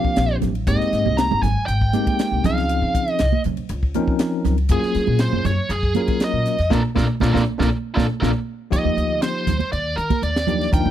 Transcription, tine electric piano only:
0.00 0.51 F3 medium
0.00 0.51 A#3 medium
0.00 0.52 C4 medium
0.00 0.52 D4 medium
0.00 0.52 G4 medium
0.67 1.47 G#3 medium
0.67 1.47 A#3 medium
0.67 1.47 C4 medium
0.67 1.47 D#4 medium
0.67 1.47 G4 medium
1.93 2.44 G#3 medium
1.93 2.44 A#3 medium
1.93 2.43 C4 medium
1.93 2.43 D#4 medium
1.93 2.44 G4 medium
2.44 3.25 F3 medium
2.44 3.24 C4 medium
2.44 3.25 C#4 medium
2.44 3.25 D#4 medium
2.44 3.25 G#4 medium
3.95 4.55 F3 medium
3.95 4.55 C4 medium
3.95 4.55 C#4 medium
3.95 4.55 D#4 medium
3.95 4.55 A#4 medium
4.70 5.50 F#3 medium
4.70 5.50 A#3 medium
4.70 5.50 C#4 medium
4.70 5.50 F4 medium
4.70 5.50 G#4 medium
5.96 6.56 F#3 medium
5.96 6.56 A#3 medium
5.96 6.56 C#4 medium
5.96 6.56 F4 medium
5.96 6.56 A#4 medium
6.70 6.79 A#3 loud
6.70 6.79 D4 loud
6.70 6.79 F4 loud
6.95 7.04 A#3 medium
6.95 7.04 D4 medium
6.95 7.04 F4 medium
7.21 7.29 A#3 medium
7.21 7.30 D4 medium
7.21 7.30 F4 medium
7.34 7.42 A#3 loud
7.34 7.42 D4 medium
7.34 7.42 F4 loud
7.58 7.67 A#3 medium
7.58 7.67 D4 medium
7.58 7.67 F4 medium
7.96 8.04 A#3 medium
7.96 8.05 D4 loud
7.96 8.05 F4 loud
8.22 8.30 A#3 medium
8.22 8.30 D4 medium
8.22 8.30 F4 medium
8.71 9.51 F3 medium
8.71 9.51 A#3 medium
8.71 9.51 D#4 medium
8.71 9.51 F4 medium
8.71 9.51 G4 medium
10.47 10.67 F3 medium
10.47 10.68 A#3 medium
10.47 10.68 D4 medium
10.47 10.68 D#4 medium
10.47 10.68 G4 medium
10.72 10.91 F3 medium
10.72 10.91 A#3 medium
10.72 10.91 D4 medium
10.72 10.91 D#4 medium
10.72 10.91 A#4 medium

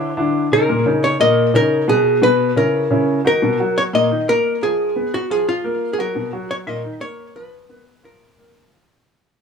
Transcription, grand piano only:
0.00 0.11 D3 medium
0.00 0.11 D4 medium
0.00 0.11 E4 medium
0.17 0.45 D3 medium
0.17 0.45 D4 medium
0.17 0.45 E4 medium
0.52 0.66 C#3 medium
0.52 0.66 C#4 medium
0.52 0.66 D#4 medium
0.69 0.83 A#2 medium
0.69 0.83 A#3 medium
0.69 0.83 A#4 medium
0.86 1.14 C#3 medium
0.86 1.14 C#4 medium
0.86 1.14 D#4 medium
1.20 1.48 A#2 medium
1.20 1.48 A#3 medium
1.20 1.48 A#4 medium
1.54 1.82 C#3 medium
1.54 1.82 C#4 medium
1.54 1.82 D#4 medium
1.88 2.16 B2 medium
1.88 2.16 B3 medium
1.88 2.16 B4 medium
2.22 2.50 B2 medium
2.22 2.50 B3 medium
2.22 2.50 B4 medium
2.56 2.84 C#3 medium
2.56 2.84 C#4 medium
2.56 2.85 E4 medium
2.90 3.19 C#3 medium
2.90 3.19 C#4 medium
2.90 3.19 E4 medium
3.25 3.39 D#3 medium
3.25 3.39 D#4 medium
3.25 3.39 F#4 medium
3.42 3.56 B2 medium
3.42 3.56 B3 medium
3.60 3.87 F#3 medium
3.60 3.88 F#4 medium
3.93 4.07 A#2 medium
3.93 4.07 A#3 medium
4.11 4.25 D#3 medium
4.11 4.25 D#4 medium
4.28 4.56 A#3 medium
4.28 4.56 A#4 medium
4.62 4.90 F3 medium
4.62 4.90 F4 medium
4.96 5.24 B3 medium
4.96 5.24 B4 medium
5.30 5.58 F3 medium
5.30 5.58 F4 medium
5.64 5.92 A#3 medium
5.64 5.92 A#4 medium
5.98 6.12 F#3 medium
5.98 6.12 F#4 medium
6.15 6.29 B2 medium
6.15 6.29 B3 medium
6.33 6.61 F#3 medium
6.33 6.61 F#4 medium
6.67 6.81 A#2 medium
6.67 6.81 A#3 medium
6.84 6.98 D#3 medium
6.84 6.98 D#4 medium
7.00 7.28 A#3 medium
7.00 7.29 A#4 medium
7.36 7.63 F3 medium
7.36 7.63 F4 medium
7.69 7.97 B3 medium
7.69 7.97 B4 medium
8.03 8.31 F3 medium
8.03 8.31 F4 medium
8.38 8.66 A#3 medium
8.38 8.66 A#4 medium
8.72 8.86 F3 medium
8.72 8.86 F4 medium

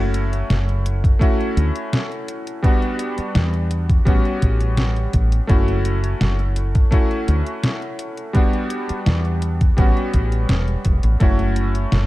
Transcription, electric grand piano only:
0.00 1.14 A3 medium
0.00 1.14 C#4 medium
0.00 1.15 E4 medium
0.00 1.15 F#4 medium
1.19 2.56 A3 medium
1.19 2.57 C#4 medium
1.19 2.57 E4 medium
1.19 2.58 F#4 medium
2.62 3.99 G3 medium
2.62 4.00 B3 medium
2.62 4.00 D4 medium
2.62 4.01 F#4 medium
4.05 5.42 G3 medium
4.05 5.43 B3 medium
4.05 5.43 C#4 medium
4.05 5.44 F#4 medium
5.47 6.85 A3 medium
5.47 6.85 C#4 medium
5.47 6.86 E4 medium
5.47 6.86 F#4 medium
6.91 8.28 A3 medium
6.91 8.28 C#4 medium
6.91 8.29 E4 medium
6.91 8.29 F#4 medium
8.33 9.70 G3 medium
8.33 9.71 B3 medium
8.33 9.71 D4 medium
8.33 9.72 F#4 medium
9.77 11.14 G3 medium
9.77 11.14 B3 medium
9.77 11.14 C#4 medium
9.77 11.15 F#4 medium
11.20 12.07 A3 medium
11.20 12.07 C#4 medium
11.20 12.07 E4 medium
11.20 12.07 F#4 medium

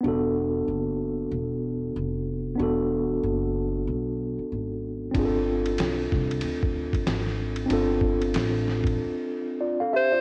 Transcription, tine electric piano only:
0.00 2.54 B3 medium
0.00 2.55 D4 medium
0.06 2.56 F#4 medium
0.06 2.57 A4 medium
2.56 5.09 B3 medium
2.56 5.10 D4 medium
2.60 5.11 F#4 medium
2.60 5.13 A4 medium
5.11 7.64 C4 medium
5.11 7.66 D4 medium
5.16 7.67 F4 medium
5.16 5.25 G#4 medium
5.25 7.71 A4 medium
7.66 10.19 C4 medium
7.66 10.21 D4 medium
7.71 9.58 F4 medium
7.71 9.59 A4 medium
9.61 9.80 F4 soft
9.61 9.79 D5 soft
9.80 9.93 A4 medium
9.80 9.93 F5 medium
9.93 10.12 G4 soft
9.93 10.12 E5 medium
10.12 10.21 F4 soft
10.12 10.21 D5 medium

